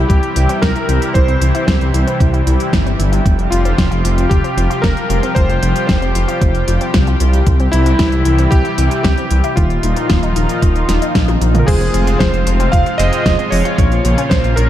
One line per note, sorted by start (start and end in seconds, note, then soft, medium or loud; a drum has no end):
0.00 7.43 C3 medium
0.00 3.21 E3 medium
0.00 7.43 G3 medium
0.00 0.11 E4 loud
0.00 3.21 E4 medium
0.00 3.22 G4 medium
0.08 0.21 C2 medium
0.08 0.20 E3 medium
0.08 0.63 G4 medium
0.08 kick loud
0.08 closed hi-hat medium
0.23 closed hi-hat soft
0.36 0.47 C2 loud
0.36 0.49 E3 medium
0.36 closed hi-hat medium
0.49 0.59 C4 medium
0.49 closed hi-hat medium
0.62 0.73 C2 medium
0.62 0.68 E3 medium
0.62 1.11 A#4 medium
0.62 kick loud
0.62 snare loud
0.62 closed hi-hat medium
0.76 0.82 E4 medium
0.76 closed hi-hat soft
0.89 0.99 C2 medium
0.89 0.99 E3 medium
0.89 closed hi-hat medium
1.02 closed hi-hat medium
1.14 1.37 C2 medium
1.14 1.28 E3 medium
1.14 1.65 C5 loud
1.14 kick loud
1.14 closed hi-hat medium
1.28 1.38 C4 medium
1.28 closed hi-hat soft
1.41 1.52 C2 medium
1.41 1.48 E3 medium
1.41 closed hi-hat medium
1.55 1.61 E4 medium
1.55 closed hi-hat soft
1.67 1.78 C2 medium
1.67 1.78 E3 medium
1.67 2.69 C5 medium
1.67 kick loud
1.67 snare loud
1.67 closed hi-hat medium
1.81 1.92 C2 medium
1.81 closed hi-hat soft
1.94 2.05 C2 medium
1.94 2.07 E3 medium
1.94 closed hi-hat medium
2.07 2.17 C4 medium
2.07 closed hi-hat soft
2.20 2.42 C2 medium
2.20 2.26 E3 medium
2.20 kick loud
2.20 closed hi-hat soft
2.34 2.40 E4 medium
2.34 closed hi-hat soft
2.47 2.57 C2 loud
2.47 2.57 E3 medium
2.47 closed hi-hat medium
2.60 closed hi-hat soft
2.73 2.94 G1 medium
2.73 2.85 E3 medium
2.73 kick loud
2.73 snare loud
2.73 closed hi-hat soft
2.86 2.96 C4 medium
2.86 closed hi-hat soft
2.99 3.21 G1 loud
2.99 3.05 E3 medium
2.99 closed hi-hat medium
3.12 3.18 E4 medium
3.12 closed hi-hat soft
3.25 3.47 F1 loud
3.25 3.36 F3 medium
3.25 7.43 F3 medium
3.25 7.43 F4 medium
3.25 9.53 G4 medium
3.25 kick loud
3.25 closed hi-hat medium
3.39 closed hi-hat soft
3.50 3.73 F1 medium
3.50 3.64 F3 medium
3.50 4.26 F4 medium
3.50 closed hi-hat medium
3.65 3.75 C4 medium
3.65 closed hi-hat soft
3.78 3.89 F1 medium
3.78 3.84 F3 medium
3.78 kick loud
3.78 snare loud
3.78 closed hi-hat soft
3.91 4.02 F1 medium
3.91 3.97 F4 medium
3.91 closed hi-hat soft
4.04 4.26 F1 loud
4.04 4.15 F3 medium
4.04 closed hi-hat medium
4.18 closed hi-hat soft
4.29 4.42 F1 medium
4.29 4.43 F3 medium
4.29 4.84 G4 medium
4.29 kick loud
4.29 closed hi-hat soft
4.44 4.54 C4 medium
4.44 closed hi-hat soft
4.57 4.68 F1 loud
4.57 4.63 F3 medium
4.57 closed hi-hat medium
4.70 4.76 F4 medium
4.70 closed hi-hat soft
4.82 4.94 F1 medium
4.82 4.94 F3 medium
4.82 5.37 A#4 medium
4.82 kick loud
4.82 snare loud
4.82 closed hi-hat soft
4.97 closed hi-hat soft
5.10 5.21 F1 medium
5.10 5.22 F3 medium
5.10 closed hi-hat medium
5.23 5.33 C4 medium
5.23 closed hi-hat soft
5.35 5.58 F1 loud
5.35 5.42 F3 medium
5.35 5.86 C5 loud
5.35 kick loud
5.35 closed hi-hat soft
5.49 5.55 F4 medium
5.49 closed hi-hat soft
5.62 5.73 F1 medium
5.62 5.73 F3 medium
5.62 closed hi-hat medium
5.76 closed hi-hat medium
5.87 6.00 F1 medium
5.87 6.01 F3 medium
5.87 6.89 C5 medium
5.87 kick loud
5.87 snare loud
5.87 closed hi-hat soft
6.02 6.13 F1 medium
6.02 6.12 C4 medium
6.02 closed hi-hat soft
6.15 6.26 F1 medium
6.15 6.21 F3 medium
6.15 closed hi-hat medium
6.28 6.34 F4 medium
6.28 closed hi-hat medium
6.41 6.63 F1 medium
6.41 6.52 F3 medium
6.41 kick loud
6.41 closed hi-hat soft
6.55 closed hi-hat soft
6.68 6.78 F1 loud
6.68 6.80 F3 medium
6.68 closed hi-hat medium
6.81 6.91 C4 medium
6.81 closed hi-hat soft
6.94 7.15 C2 loud
6.94 7.00 F3 medium
6.94 kick loud
6.94 snare loud
6.94 closed hi-hat soft
7.07 7.13 F4 medium
7.07 closed hi-hat soft
7.20 7.42 C2 loud
7.20 7.30 F3 medium
7.20 closed hi-hat medium
7.33 closed hi-hat soft
7.47 7.68 C2 loud
7.47 9.55 C3 medium
7.47 7.59 E3 medium
7.47 9.55 E3 medium
7.47 9.55 G3 medium
7.47 9.55 E4 medium
7.47 kick loud
7.47 closed hi-hat medium
7.60 7.70 C4 medium
7.60 closed hi-hat soft
7.72 7.95 C2 loud
7.72 7.79 E3 medium
7.72 8.54 E4 loud
7.72 closed hi-hat medium
7.86 7.92 E4 medium
7.86 closed hi-hat medium
7.99 8.10 C2 medium
7.99 8.09 E3 medium
7.99 kick loud
7.99 snare loud
7.99 closed hi-hat soft
8.12 8.23 C2 medium
8.12 closed hi-hat soft
8.25 8.47 C2 loud
8.25 8.38 E3 medium
8.25 closed hi-hat medium
8.38 8.49 C4 medium
8.38 closed hi-hat medium
8.51 8.63 C2 medium
8.51 8.58 E3 medium
8.51 9.00 G4 loud
8.51 kick loud
8.51 closed hi-hat soft
8.65 8.71 E4 medium
8.65 closed hi-hat soft
8.78 8.89 C2 loud
8.78 8.88 E3 medium
8.78 closed hi-hat medium
8.91 closed hi-hat soft
9.03 9.15 C2 medium
9.03 9.17 E3 medium
9.03 9.58 G4 loud
9.03 kick loud
9.03 snare loud
9.03 closed hi-hat soft
9.18 9.28 C4 medium
9.18 closed hi-hat soft
9.31 9.42 C2 medium
9.31 9.37 E3 medium
9.31 closed hi-hat medium
9.44 9.50 E4 medium
9.44 closed hi-hat soft
9.56 9.79 D#1 loud
9.56 11.66 A#2 medium
9.56 9.67 D#3 medium
9.56 11.66 D#3 medium
9.56 11.66 F3 medium
9.56 11.66 D#4 medium
9.56 11.10 F4 medium
9.56 11.66 F4 medium
9.56 kick loud
9.56 closed hi-hat medium
9.70 closed hi-hat soft
9.83 9.94 D#1 medium
9.83 9.96 D#3 medium
9.83 closed hi-hat medium
9.96 10.07 A#3 medium
9.96 closed hi-hat medium
10.10 10.21 D#1 medium
10.10 10.16 D#3 medium
10.10 kick loud
10.10 snare loud
10.10 closed hi-hat medium
10.23 10.34 D#1 medium
10.23 10.29 D#4 medium
10.23 closed hi-hat soft
10.36 10.47 D#1 medium
10.36 10.46 D#3 medium
10.36 closed hi-hat medium
10.49 closed hi-hat medium
10.62 10.84 D#1 loud
10.62 10.75 D#3 medium
10.62 kick loud
10.62 closed hi-hat medium
10.76 10.86 A#3 medium
10.76 closed hi-hat soft
10.89 10.99 D#1 loud
10.89 10.95 D#3 medium
10.89 snare medium
10.89 closed hi-hat loud
11.02 11.08 D#4 medium
11.02 closed hi-hat soft
11.15 11.36 A#1 loud
11.15 11.25 D#3 medium
11.15 kick loud
11.15 snare loud
11.15 closed hi-hat medium
11.15 high tom medium
11.28 closed hi-hat soft
11.28 high tom medium
11.41 11.63 A#1 loud
11.41 11.54 D#3 medium
11.41 closed hi-hat medium
11.55 11.65 A#3 medium
11.55 closed hi-hat soft
11.55 mid tom medium
11.59 11.67 A#4 medium
11.67 11.89 F1 loud
11.67 13.76 G#2 medium
11.67 13.76 C3 medium
11.67 11.80 F3 medium
11.67 14.70 F3 medium
11.67 12.96 G#3 medium
11.67 13.76 C4 medium
11.67 12.96 C4 medium
11.67 14.70 F4 medium
11.67 12.96 F4 medium
11.67 12.21 G#4 medium
11.67 12.96 G#4 medium
11.67 12.96 C5 medium
11.67 kick loud
11.67 closed hi-hat medium
11.67 crash loud
11.81 11.91 C4 medium
11.81 closed hi-hat soft
11.94 12.15 F1 loud
11.94 12.00 F3 medium
11.94 closed hi-hat medium
12.07 12.13 F4 medium
12.07 closed hi-hat medium
12.19 12.31 F1 medium
12.19 12.30 F3 medium
12.19 12.69 C5 loud
12.19 kick loud
12.19 snare loud
12.19 closed hi-hat medium
12.33 12.44 F1 medium
12.33 closed hi-hat soft
12.46 12.68 F1 loud
12.46 12.59 F3 medium
12.46 closed hi-hat loud
12.60 12.70 C4 medium
12.60 closed hi-hat medium
12.72 12.84 F1 medium
12.72 12.79 F3 medium
12.72 12.99 F5 loud
12.72 kick loud
12.72 closed hi-hat medium
12.86 12.92 F4 medium
12.86 closed hi-hat soft
12.98 13.10 F1 loud
12.98 13.09 F3 medium
12.98 13.49 G#3 loud
12.98 13.49 C4 loud
12.98 13.49 F4 medium
12.98 13.49 G#4 loud
12.98 13.49 C5 loud
12.98 13.53 D#5 loud
12.98 closed hi-hat medium
13.13 closed hi-hat medium
13.26 13.36 F1 medium
13.26 13.38 F3 medium
13.26 kick loud
13.26 snare loud
13.26 closed hi-hat medium
13.39 13.49 C4 medium
13.39 closed hi-hat soft
13.50 13.63 F1 medium
13.50 13.58 F3 medium
13.50 13.75 G#3 medium
13.50 13.75 C4 medium
13.50 13.75 F4 medium
13.50 13.75 G#4 medium
13.50 14.33 C#5 loud
13.50 13.75 D#5 medium
13.50 open hi-hat medium
13.65 13.71 F4 medium
13.65 closed hi-hat medium
13.78 14.00 A#1 loud
13.78 14.70 A#2 medium
13.78 14.70 C#3 medium
13.78 13.88 F3 medium
13.78 14.70 A#3 medium
13.78 14.70 C#4 medium
13.78 14.70 F4 medium
13.78 14.70 A#4 medium
13.78 14.70 C#5 medium
13.78 kick loud
13.78 closed hi-hat medium
13.92 closed hi-hat soft
14.04 14.15 A#1 medium
14.04 14.17 F3 medium
14.04 closed hi-hat medium
14.18 14.28 C#4 medium
14.18 closed hi-hat medium
14.30 14.42 A#1 medium
14.30 14.37 F3 medium
14.30 14.57 C5 medium
14.30 kick loud
14.30 snare loud
14.30 closed hi-hat medium
14.44 14.55 A#1 medium
14.44 14.50 F4 medium
14.44 closed hi-hat soft
14.56 14.68 A#1 medium
14.56 14.67 F3 medium
14.56 14.70 A#4 medium
14.56 closed hi-hat loud